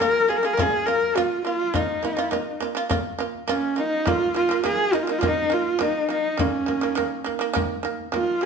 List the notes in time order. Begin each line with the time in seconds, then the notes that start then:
0.00 A#3 F4 A#4, frame drum
0.28 A#3 F4 G#4, frame drum
0.37 A#4
0.43 A#3 F4 G#4
0.53 A#4
0.57 A#3 F4 G#4, frame drum
0.86 A#3 F4 A#4
1.03 frame drum
1.16 A#3 F4, frame drum
1.44 A#3 F4
1.74 A#3 D#4 F4, frame drum
2.03 A#3 F4, frame drum
2.17 A#3 F4, frame drum
2.31 A#3 F4, frame drum
2.60 A#3 F4, frame drum
2.75 A#3 F4
2.89 A#3 F4, frame drum
3.19 A#3 F4
3.34 frame drum
3.48 A#3 C#4 F4, frame drum
3.76 A#3 D#4 F4
4.06 D#3 A#3 F4, frame drum
4.35 D#3 A#3 F4
4.49 D#3 A#3, frame drum
4.64 D#3 A#3 G#4, frame drum
4.93 D#3 A#3 D#4, frame drum
5.02 F4
5.07 D#3 A#3 D#4
5.19 D#3 F4, frame drum
5.23 A#3
5.27 D#4
5.50 D#3 A#3 F4
5.67 frame drum
5.79 D#3 A#3 D#4, frame drum
6.09 D#3 A#3 D#4
6.37 D#3 A#3 C#4, frame drum
6.66 D#3 A#3, frame drum
6.81 D#3 A#3, frame drum
6.95 D#3 A#3, frame drum
7.24 D#3 A#3, frame drum
7.39 D#3 A#3
7.54 D#3 A#3, frame drum
7.83 D#3 A#3
8.00 frame drum
8.12 D#3 A#3 F4, frame drum
8.41 D#3 G#4